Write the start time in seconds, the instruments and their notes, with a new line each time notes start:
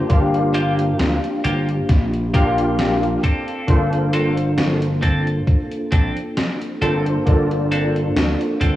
Already playing: tine electric piano A#3 D4 F4 G4 C5
0.09 slap bass G1, tine electric piano A#3 D4 F4 G4 F5, kick, closed hi-hat
0.34 closed hi-hat
0.54 clean electric guitar A#3 F4 G4, closed hi-hat
0.79 closed hi-hat
0.99 slap bass D2, snare, closed hi-hat
1.24 closed hi-hat
1.44 slap bass G1, clean electric guitar A#3 F4 G4, closed hi-hat
1.69 closed hi-hat
1.89 slap bass A#1, kick, snare, closed hi-hat
2.13 closed hi-hat
2.33 tine electric piano A#3 D4 F4 G4 F5, clean electric guitar A#3 F4 G4, kick, closed hi-hat
2.58 closed hi-hat
2.79 snare, closed hi-hat
3.03 closed hi-hat
3.23 clean electric guitar C4 D4 A4, kick, closed hi-hat
3.48 closed hi-hat
3.67 slap bass G1, tine electric piano A#3 D4 F4 A4 C5, kick, closed hi-hat
3.93 closed hi-hat
4.13 clean electric guitar C4 D4 A4, closed hi-hat
4.37 closed hi-hat
4.58 snare, closed hi-hat
4.82 closed hi-hat
5.02 clean electric guitar C4 D4 A4, kick, closed hi-hat
5.27 closed hi-hat
5.47 kick, closed hi-hat
5.72 closed hi-hat
5.92 slap bass A#1, clean electric guitar C4 D4 A4, kick, closed hi-hat
6.17 closed hi-hat
6.37 snare, closed hi-hat
6.62 closed hi-hat
6.81 slap bass G1, tine electric piano A#3 D4 F4 A4 C5, clean electric guitar C4 D4 A4, closed hi-hat
7.06 closed hi-hat
7.26 slap bass G1, tine electric piano A#3 D4 F4 A4 D5, kick, closed hi-hat
7.51 closed hi-hat
7.71 clean electric guitar C4 D4 A4, closed hi-hat
7.96 closed hi-hat
8.16 slap bass D2, snare, closed hi-hat
8.41 closed hi-hat
8.61 slap bass G1, clean electric guitar C4 D4 A4, kick, closed hi-hat